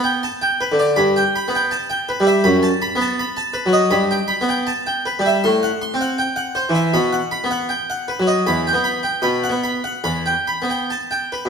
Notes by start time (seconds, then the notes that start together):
Already playing: B3
0.04 G5
0.23 A5
0.42 G5
0.61 B4
0.72 D3
0.79 D5
0.96 G2 B5
1.16 G5
1.36 B5
1.48 B3
1.55 G5
1.71 A5
1.90 G5
2.09 B4
2.20 G3
2.27 E5
2.44 F#2 B5
2.63 A5
2.82 B5
2.96 B3
3.01 A5
3.19 B5
3.37 A5
3.54 B4
3.66 F#3
3.73 D#5
3.91 G2 B5
4.11 G5
4.28 B5
4.41 B3
4.49 G5
4.67 A5
4.87 G5
5.06 B4
5.19 G3
5.26 E5
5.44 A2 C6
5.63 F#5
5.82 C6
5.94 C4
6.01 F#5
6.18 G5
6.36 F#5
6.55 C5
6.69 E3
6.75 E5
6.94 B2 B5
7.13 F#5
7.31 B5
7.44 B3
7.51 F#5
7.69 G5
7.90 F#5
8.08 B4
8.20 F#3
8.27 D#5
8.47 E2 B5
8.67 G5
8.73 B3
8.84 B5
9.03 G5
9.22 B2 B5
9.44 F#5
9.49 B3
9.64 B5
9.84 F#5
10.04 E2 B5
10.26 G5
10.48 B5
10.62 B3
10.70 G5
10.90 A5
11.11 G5
11.32 B4
11.45 B2